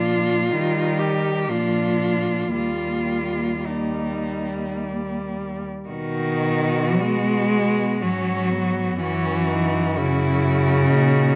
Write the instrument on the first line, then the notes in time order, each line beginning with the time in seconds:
cello
Already playing: A#2 F3 D4 F4
0.52 D#3 G3 D#4
0.99 G4
1.49 A#2 F3 D4 F4
2.54 D#2 G3 A#3 F4
3.65 G3 A#3 D#4
5.89 B2 D#3 D#4 F#4
7.00 G#3 B3
8.02 G#2 F#3 C#4 F#4
8.51 B3
8.99 F#2 E3 C#4 F#4
9.48 D#4
9.98 C#3 E4 F#4
10.95 A#2 D#4